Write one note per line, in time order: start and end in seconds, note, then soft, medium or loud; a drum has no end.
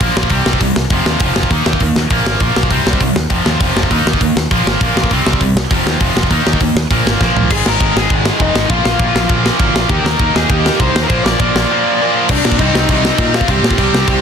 0.00 0.10 A#1 medium
0.00 0.30 A#2 medium
0.00 0.30 F3 medium
0.00 0.31 A#3 medium
0.00 kick loud
0.00 open hi-hat medium
0.16 0.26 A#1 medium
0.16 snare loud
0.23 kick medium
0.29 0.40 C2 loud
0.29 0.59 C3 medium
0.29 0.60 G3 loud
0.29 0.60 C4 loud
0.29 kick medium
0.29 open hi-hat medium
0.46 0.55 C2 medium
0.46 snare loud
0.53 kick medium
0.60 0.70 C2 medium
0.60 0.74 C3 medium
0.60 0.75 G3 medium
0.60 kick medium
0.60 open hi-hat medium
0.76 0.85 C2 medium
0.76 snare loud
0.90 1.00 F1 medium
0.90 1.20 F2 medium
0.90 1.21 C3 medium
0.90 1.21 F3 loud
0.90 kick loud
0.90 open hi-hat medium
1.06 1.15 D#2 medium
1.06 snare loud
1.20 1.30 F1 medium
1.20 1.50 F2 medium
1.20 1.51 C3 medium
1.20 1.51 F3 medium
1.20 kick loud
1.20 open hi-hat medium
1.36 1.45 F1 medium
1.36 snare loud
1.43 kick medium
1.51 1.60 D#2 loud
1.51 1.80 D#3 medium
1.51 1.81 A#3 medium
1.51 1.81 D#4 medium
1.51 kick medium
1.51 open hi-hat medium
1.66 1.75 D#2 medium
1.66 snare loud
1.73 kick medium
1.80 1.90 D#2 medium
1.80 1.95 D#3 medium
1.80 1.95 A#3 medium
1.80 kick medium
1.80 open hi-hat soft
1.96 2.05 D#2 medium
1.96 snare loud
2.10 2.20 A#1 medium
2.10 2.39 A#2 medium
2.10 2.40 F3 medium
2.10 2.41 A#3 medium
2.10 kick loud
2.10 open hi-hat medium
2.25 2.35 G#1 medium
2.25 snare loud
2.40 2.50 A#1 medium
2.40 2.70 A#2 medium
2.40 2.70 F3 medium
2.40 2.71 A#3 medium
2.40 kick loud
2.40 open hi-hat medium
2.56 2.70 B1 medium
2.56 snare loud
2.63 kick medium
2.70 2.80 C2 medium
2.70 3.00 C3 medium
2.70 3.00 G3 medium
2.70 3.00 C4 loud
2.70 kick medium
2.70 open hi-hat medium
2.87 2.96 C2 medium
2.87 snare loud
2.93 kick medium
3.00 3.10 C2 medium
3.00 3.14 C3 medium
3.00 3.15 G3 medium
3.00 kick medium
3.00 open hi-hat medium
3.16 3.25 D#2 medium
3.16 snare loud
3.30 3.40 F1 medium
3.30 3.59 F2 medium
3.30 3.60 C3 medium
3.30 3.60 F3 medium
3.30 kick loud
3.30 open hi-hat medium
3.46 3.55 D#2 medium
3.46 snare loud
3.60 3.70 F1 medium
3.60 3.90 F2 medium
3.60 3.90 C3 medium
3.60 3.90 F3 medium
3.60 kick loud
3.60 open hi-hat medium
3.76 3.85 F1 medium
3.76 snare loud
3.83 kick medium
3.91 4.00 D#2 loud
3.91 4.20 D#3 medium
3.91 4.20 A#3 medium
3.91 4.21 D#4 loud
3.91 kick medium
3.91 open hi-hat medium
4.06 4.15 D#2 medium
4.06 snare loud
4.13 kick medium
4.21 4.30 D#2 medium
4.21 4.34 D#3 medium
4.21 4.35 A#3 medium
4.21 kick medium
4.21 open hi-hat medium
4.36 4.45 D#2 medium
4.36 snare loud
4.51 4.60 A#1 medium
4.51 4.80 A#2 medium
4.51 4.81 F3 medium
4.51 4.81 A#3 medium
4.51 kick loud
4.51 open hi-hat medium
4.66 4.75 G#1 medium
4.66 snare loud
4.81 4.90 A#1 medium
4.81 5.10 A#2 medium
4.81 5.10 F3 medium
4.81 5.11 A#3 medium
4.81 kick loud
4.81 open hi-hat medium
4.96 5.05 A#1 medium
4.96 snare loud
5.04 kick medium
5.11 5.20 C2 loud
5.11 5.40 C3 medium
5.11 5.41 G3 loud
5.11 5.41 C4 medium
5.11 kick medium
5.11 open hi-hat medium
5.26 5.35 C2 medium
5.26 snare loud
5.33 kick medium
5.41 5.50 C2 medium
5.41 5.55 C3 medium
5.41 5.55 G3 medium
5.41 kick medium
5.41 open hi-hat medium
5.55 5.65 C2 medium
5.55 snare loud
5.71 5.80 F1 medium
5.71 6.00 F2 medium
5.71 6.00 C3 medium
5.71 6.01 F3 loud
5.71 kick loud
5.71 open hi-hat medium
5.86 5.95 D#2 medium
5.86 snare loud
6.01 6.10 F1 medium
6.01 6.30 F2 medium
6.01 6.30 C3 medium
6.01 6.31 F3 medium
6.01 kick loud
6.01 open hi-hat medium
6.16 6.32 F1 medium
6.16 snare loud
6.23 kick medium
6.31 6.40 D#2 medium
6.31 6.60 D#3 medium
6.31 6.60 A#3 medium
6.31 6.61 D#4 loud
6.31 kick medium
6.31 open hi-hat medium
6.47 6.56 D#2 medium
6.47 snare loud
6.53 kick medium
6.60 6.70 D#2 medium
6.60 6.74 D#3 medium
6.60 6.75 A#3 medium
6.60 kick medium
6.60 open hi-hat medium
6.75 6.85 D#2 medium
6.75 snare loud
6.91 7.00 A#1 medium
6.91 7.20 A#2 medium
6.91 7.20 F3 medium
6.91 7.20 A#3 medium
6.91 kick loud
6.91 open hi-hat medium
7.06 7.15 G#1 medium
7.06 snare loud
7.21 7.30 A#1 medium
7.21 7.50 A#2 medium
7.21 7.50 F3 medium
7.21 7.51 A#3 medium
7.21 kick loud
7.21 snare medium
7.36 7.45 A#1 medium
7.36 floor tom medium
7.50 7.60 G#1 medium
7.50 7.81 G#2 medium
7.50 7.80 D#3 loud
7.50 7.80 G#3 loud
7.50 7.65 G#4 medium
7.50 7.66 G#5 loud
7.50 kick loud
7.50 crash loud
7.66 7.76 G#1 medium
7.66 7.94 A#4 medium
7.66 7.98 A#5 loud
7.66 snare loud
7.80 7.90 G#1 medium
7.80 8.09 G#2 medium
7.80 8.09 D#3 loud
7.80 8.10 G#3 loud
7.80 kick loud
7.80 ride medium
7.96 8.05 G#1 medium
7.96 8.38 G#4 medium
7.96 8.43 G#5 medium
7.96 snare loud
8.10 8.29 G#1 loud
8.10 8.39 G#2 medium
8.10 8.38 D#3 medium
8.10 8.38 G#3 medium
8.10 kick loud
8.10 ride medium
8.25 snare loud
8.39 8.50 F1 medium
8.39 8.69 G#2 medium
8.39 8.68 D#3 medium
8.39 8.69 G#3 loud
8.39 8.69 D#4 medium
8.39 8.70 D#5 medium
8.39 kick loud
8.39 ride medium
8.55 8.65 G#1 medium
8.55 snare loud
8.69 8.79 A#1 loud
8.69 8.99 A#2 medium
8.69 8.98 F3 medium
8.69 8.98 A#3 medium
8.69 8.85 F4 medium
8.69 8.85 F5 medium
8.69 kick loud
8.69 ride medium
8.85 8.95 A#1 medium
8.85 9.28 F4 medium
8.85 9.27 F5 medium
8.85 snare loud
8.99 9.09 A#1 medium
8.99 9.27 A#2 medium
8.99 9.28 F3 loud
8.99 9.29 A#3 loud
8.99 kick loud
8.99 ride medium
9.15 9.25 A#1 medium
9.15 snare loud
9.29 9.49 A#1 medium
9.29 9.59 A#2 medium
9.29 9.58 F3 medium
9.29 9.58 A#3 loud
9.29 kick loud
9.29 ride medium
9.46 snare loud
9.59 9.69 G#1 medium
9.59 9.89 A#2 medium
9.59 9.89 F3 medium
9.59 9.90 A#3 medium
9.59 kick loud
9.59 ride medium
9.74 9.84 A#1 medium
9.74 snare loud
9.89 9.99 D#2 medium
9.89 10.19 D#3 medium
9.89 10.19 A#3 loud
9.89 10.18 D#4 loud
9.89 10.03 G4 medium
9.89 10.07 G5 medium
9.89 kick loud
9.89 ride medium
10.04 10.14 D#2 medium
10.04 10.32 A#4 medium
10.04 10.36 A#5 medium
10.04 snare loud
10.19 10.29 D#2 medium
10.19 10.48 D#3 medium
10.19 10.49 A#3 medium
10.19 10.49 D#4 loud
10.19 kick loud
10.19 ride medium
10.35 10.45 D#2 medium
10.35 10.49 G#4 medium
10.35 10.51 G#5 medium
10.35 snare loud
10.49 10.69 D#2 medium
10.49 10.80 D#3 medium
10.49 10.79 A#3 loud
10.49 10.78 D#4 loud
10.49 10.78 G4 medium
10.49 10.80 G5 medium
10.49 kick loud
10.49 ride medium
10.66 snare loud
10.80 10.89 C2 medium
10.80 11.09 D#3 medium
10.80 11.09 A#3 medium
10.80 11.09 D#4 loud
10.80 11.01 C5 medium
10.80 11.03 C6 medium
10.80 kick loud
10.80 ride medium
10.95 11.04 D#2 medium
10.95 snare loud
11.03 11.06 A#4 medium
11.03 11.06 A#5 medium
11.08 11.19 A#1 medium
11.08 11.40 A#2 medium
11.08 11.40 F3 loud
11.08 11.39 A#3 loud
11.08 11.23 C5 medium
11.08 11.23 C6 loud
11.08 kick loud
11.08 ride medium
11.24 11.34 A#1 medium
11.24 12.10 D5 medium
11.24 12.10 D6 loud
11.24 snare loud
11.40 11.49 A#1 medium
11.40 11.69 A#2 loud
11.40 11.70 F3 loud
11.40 11.71 A#3 loud
11.40 kick loud
11.40 ride medium
11.55 11.64 A#1 medium
11.55 snare loud
11.71 12.01 A#2 medium
11.71 12.00 F3 loud
11.71 12.00 A#3 loud
12.01 12.29 A#2 medium
12.01 12.29 F3 medium
12.01 12.29 A#3 loud
12.29 12.40 C2 loud
12.29 12.60 C3 loud
12.29 12.60 G3 medium
12.29 12.60 C4 loud
12.29 12.58 D4 medium
12.29 12.59 D5 medium
12.29 kick loud
12.29 crash loud
12.29 crash medium
12.45 12.55 A#2 medium
12.45 snare loud
12.52 kick medium
12.59 12.70 C2 medium
12.59 12.88 C3 medium
12.59 12.89 G3 medium
12.59 12.90 C4 loud
12.59 12.87 D#4 medium
12.59 12.87 D#5 medium
12.59 kick loud
12.59 crash medium
12.74 12.85 C2 loud
12.74 snare loud
12.89 13.10 C2 loud
12.89 13.19 C3 loud
12.89 13.18 G3 loud
12.89 13.19 C4 loud
12.89 13.32 D#4 medium
12.89 13.36 D#5 medium
12.89 kick loud
12.89 crash medium
13.05 snare loud
13.18 13.39 A#2 loud
13.18 13.47 C3 medium
13.18 13.48 G3 medium
13.18 13.49 C4 medium
13.18 kick loud
13.18 crash medium
13.34 13.48 F4 medium
13.34 13.51 F5 medium
13.34 snare loud
13.41 kick medium
13.48 13.59 C2 loud
13.48 13.79 C3 loud
13.48 13.78 G3 loud
13.48 13.78 C4 loud
13.48 13.91 G4 loud
13.48 13.95 G5 loud
13.48 kick loud
13.48 crash medium
13.63 13.73 A#2 medium
13.63 snare loud
13.71 kick loud
13.78 13.89 C2 medium
13.78 14.06 C3 medium
13.78 14.07 G3 medium
13.78 14.09 C4 loud
13.78 kick medium
13.78 crash medium
13.93 14.03 C2 medium
13.93 14.21 G4 medium
13.93 14.21 G5 medium
13.93 snare loud
14.07 14.21 C2 medium
14.07 14.21 C3 medium
14.07 14.21 G3 loud
14.07 14.21 C4 loud
14.07 kick loud
14.07 crash medium